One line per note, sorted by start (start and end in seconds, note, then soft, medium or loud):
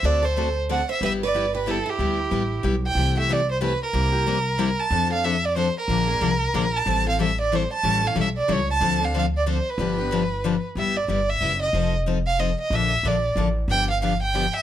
0.03 0.81 D2 medium
0.03 0.24 D3 medium
0.03 0.24 A3 medium
0.03 0.24 C4 medium
0.03 0.24 F#4 medium
0.03 0.21 A4 medium
0.03 0.24 A4 medium
0.03 0.26 D5 medium
0.23 0.55 A4 medium
0.23 0.56 C5 medium
0.37 0.47 D3 medium
0.37 0.47 A3 medium
0.37 0.47 C4 medium
0.37 0.48 F#4 medium
0.37 0.48 A4 medium
0.69 0.80 D3 medium
0.69 0.80 A3 medium
0.69 0.80 C4 medium
0.69 0.80 F#4 medium
0.69 0.80 A4 medium
0.69 0.87 D5 medium
0.69 0.88 F#5 medium
0.89 1.01 C5 medium
0.89 1.02 E5 medium
1.01 1.79 G1 medium
1.01 1.21 G3 medium
1.01 1.21 B3 medium
1.01 1.22 E4 medium
1.01 1.22 G4 medium
1.01 1.08 B4 medium
1.05 1.13 E5 medium
1.23 1.52 B4 medium
1.23 1.53 D5 medium
1.34 1.45 G3 medium
1.34 1.45 B3 medium
1.34 1.45 E4 medium
1.34 1.45 G4 medium
1.54 1.67 G4 medium
1.54 1.72 B4 medium
1.66 1.77 G3 medium
1.66 1.77 B3 medium
1.66 1.77 E4 medium
1.66 1.84 E4 medium
1.66 1.78 G4 medium
1.70 1.91 A4 medium
1.86 2.64 E4 medium
1.86 2.66 G4 medium
1.99 2.25 D2 medium
1.99 2.19 G3 medium
1.99 2.19 B3 medium
1.99 2.19 E4 medium
1.99 2.19 G4 medium
2.31 2.59 A1 medium
2.31 2.42 G3 medium
2.31 2.42 B3 medium
2.31 2.42 E4 medium
2.31 2.42 G4 medium
2.63 2.91 B1 medium
2.63 2.74 G3 medium
2.63 2.74 B3 medium
2.63 2.75 E4 medium
2.63 2.75 G4 medium
2.87 3.15 G5 medium
2.95 3.73 C2 medium
2.95 3.15 C3 medium
2.95 3.15 E3 medium
2.95 3.15 A3 medium
2.95 3.15 E4 medium
2.95 3.14 G4 medium
3.16 3.29 A3 soft
3.16 3.29 E4 soft
3.16 3.28 G4 medium
3.20 3.34 E5 medium
3.29 3.40 C3 medium
3.29 3.40 E3 medium
3.29 3.40 A3 medium
3.29 3.40 E4 medium
3.29 3.40 G4 medium
3.29 3.50 D5 medium
3.51 3.62 C5 medium
3.61 3.72 C3 medium
3.61 3.72 E3 medium
3.61 3.72 A3 medium
3.61 3.72 E4 medium
3.61 3.72 G4 medium
3.61 3.80 B4 medium
3.83 4.81 A#4 medium
3.93 4.71 C2 medium
3.93 4.12 C3 medium
3.93 4.12 G3 medium
3.93 4.12 A#3 medium
3.93 4.12 E4 medium
3.93 4.11 G4 medium
4.12 4.26 A#3 soft
4.12 4.26 E4 soft
4.12 4.25 G4 medium
4.26 4.37 C3 medium
4.26 4.37 G3 medium
4.26 4.37 A#3 medium
4.26 4.37 E4 medium
4.26 4.38 G4 medium
4.58 4.69 C3 medium
4.58 4.69 G3 medium
4.58 4.69 A#3 medium
4.58 4.70 E4 medium
4.58 4.70 G4 medium
4.80 5.11 A5 loud
4.90 5.69 F2 medium
4.90 5.10 F3 medium
4.90 5.10 C4 medium
4.90 5.10 D4 medium
4.90 5.09 A4 medium
5.10 5.23 C4 soft
5.10 5.24 D4 medium
5.10 5.23 A4 medium
5.10 5.26 F5 medium
5.24 5.34 F3 medium
5.24 5.35 C4 medium
5.24 5.35 D4 medium
5.24 5.35 A4 medium
5.24 5.47 E5 medium
5.45 5.57 D5 medium
5.56 5.67 F3 medium
5.56 5.67 C4 medium
5.56 5.67 D4 medium
5.56 5.67 A4 medium
5.56 5.75 C5 medium
5.78 6.78 A#4 loud
5.88 6.14 A#1 medium
5.88 6.07 D3 medium
5.88 6.07 F3 medium
5.88 6.08 A#3 medium
5.88 6.07 D4 medium
5.88 6.06 G#4 medium
6.07 6.20 A#3 soft
6.07 6.21 D4 soft
6.07 6.20 G#4 medium
6.21 6.49 C2 medium
6.21 6.32 D3 medium
6.21 6.32 F3 medium
6.21 6.32 A#3 medium
6.21 6.32 D4 medium
6.21 6.32 G#4 medium
6.54 6.81 A#1 medium
6.54 6.64 D3 medium
6.54 6.65 F3 medium
6.54 6.65 A#3 medium
6.54 6.65 D4 medium
6.54 6.65 G#4 medium
6.76 7.07 A5 medium
6.86 7.64 A1 medium
6.86 7.04 E3 medium
6.86 7.04 G3 medium
6.86 7.05 C4 medium
6.86 7.05 E4 medium
6.86 7.04 A4 medium
7.05 7.19 C4 soft
7.05 7.18 E4 soft
7.05 7.18 A4 medium
7.09 7.20 F5 medium
7.19 7.29 E3 medium
7.19 7.29 G3 medium
7.19 7.30 C4 medium
7.19 7.30 E4 medium
7.19 7.30 A4 medium
7.23 7.39 E5 medium
7.41 7.57 D5 medium
7.52 7.62 E3 medium
7.52 7.62 G3 medium
7.52 7.62 C4 medium
7.52 7.63 E4 medium
7.52 7.63 A4 medium
7.52 7.72 C5 medium
7.73 8.08 A5 medium
7.83 8.09 A1 medium
7.83 8.02 E3 medium
7.83 8.02 G3 medium
7.83 8.02 C#4 medium
7.83 8.02 E4 medium
7.83 8.02 A4 medium
8.03 8.15 C#4 soft
8.03 8.15 E4 medium
8.03 8.16 A4 medium
8.07 8.18 F5 medium
8.15 8.43 B1 medium
8.15 8.26 E3 medium
8.15 8.27 G3 medium
8.15 8.27 C#4 medium
8.15 8.27 E4 medium
8.15 8.27 A4 medium
8.21 8.29 E5 medium
8.38 8.54 D5 medium
8.48 8.76 C#2 medium
8.48 8.59 E3 medium
8.48 8.59 G3 medium
8.48 8.59 C#4 medium
8.48 8.59 E4 medium
8.48 8.60 A4 loud
8.52 8.70 C#5 medium
8.71 9.06 A5 medium
8.81 9.59 D2 medium
8.81 8.99 D3 medium
8.81 8.99 F3 medium
8.81 9.00 C4 medium
8.81 9.00 D4 medium
8.81 8.98 A4 medium
9.00 9.13 C4 soft
9.00 9.13 D4 medium
9.00 9.13 A4 medium
9.05 9.16 F5 medium
9.14 9.24 D3 medium
9.14 9.25 F3 medium
9.14 9.25 C4 medium
9.14 9.25 D4 medium
9.14 9.25 A4 medium
9.18 9.26 F5 medium
9.37 9.48 D5 medium
9.46 9.57 D3 medium
9.46 9.57 F3 medium
9.46 9.57 C4 medium
9.46 9.57 D4 medium
9.46 9.57 A4 medium
9.46 9.71 C5 medium
9.70 10.65 B4 medium
9.78 10.56 G1 medium
9.78 9.97 D3 medium
9.78 9.97 F3 medium
9.78 9.97 B3 medium
9.78 9.98 D4 medium
9.78 9.97 G4 medium
9.98 10.11 B3 soft
9.98 10.12 D4 soft
9.98 10.11 G4 medium
10.11 10.22 D3 medium
10.11 10.22 F3 medium
10.11 10.22 B3 medium
10.11 10.23 D4 medium
10.11 10.22 G4 medium
10.44 10.54 D3 medium
10.44 10.55 F3 medium
10.44 10.55 B3 medium
10.44 10.55 D4 medium
10.44 10.55 G4 medium
10.75 11.02 G1 medium
10.75 10.96 G3 medium
10.75 10.96 B3 medium
10.75 10.97 E4 medium
10.75 10.97 G4 medium
10.75 10.98 E5 medium
10.97 11.09 D5 medium
11.08 11.36 G1 medium
11.08 11.19 G3 medium
11.08 11.20 B3 medium
11.08 11.20 E4 medium
11.08 11.20 G4 medium
11.08 11.31 D5 medium
11.29 11.61 E5 medium
11.41 11.69 F#1 medium
11.41 11.52 G3 medium
11.41 11.52 B3 medium
11.41 11.52 E4 medium
11.41 11.53 G4 medium
11.63 11.92 D#5 medium
11.73 12.51 F1 medium
11.73 11.94 F3 medium
11.73 11.94 C4 medium
11.73 11.94 D#4 medium
11.73 11.95 A4 medium
12.06 12.17 F3 medium
12.06 12.17 C4 medium
12.06 12.18 D#4 medium
12.06 12.18 A4 medium
12.27 12.41 F5 medium
12.39 12.49 F3 medium
12.39 12.50 C4 medium
12.39 12.50 D#4 medium
12.39 12.50 A4 medium
12.39 12.58 D#5 medium
12.61 12.76 D#5 medium
12.70 12.97 A#1 medium
12.70 12.92 D3 medium
12.70 12.92 F3 medium
12.70 12.92 A#3 medium
12.70 12.92 D4 medium
12.70 12.92 A4 medium
12.75 13.09 E5 medium
13.03 13.31 A#1 medium
13.03 13.15 D3 medium
13.03 13.15 F3 medium
13.03 13.15 A#3 medium
13.03 13.15 D4 medium
13.03 13.15 A4 medium
13.07 13.38 D5 medium
13.35 13.64 A1 medium
13.35 13.47 D3 medium
13.35 13.47 F3 medium
13.35 13.48 A#3 medium
13.35 13.48 D4 medium
13.35 13.48 A4 medium
13.68 14.46 G1 medium
13.68 13.89 D3 medium
13.68 13.89 F3 medium
13.68 13.89 B3 medium
13.68 13.90 D4 medium
13.68 13.90 G4 medium
13.68 13.88 G5 loud
13.90 14.02 F5 medium
14.02 14.12 D3 medium
14.02 14.13 F3 medium
14.02 14.13 B3 medium
14.02 14.13 D4 medium
14.02 14.13 G4 medium
14.02 14.21 F5 medium
14.23 14.52 G5 medium
14.34 14.45 D3 medium
14.34 14.45 F3 medium
14.34 14.45 B3 medium
14.34 14.45 D4 medium
14.34 14.45 G4 medium
14.56 14.62 E5 medium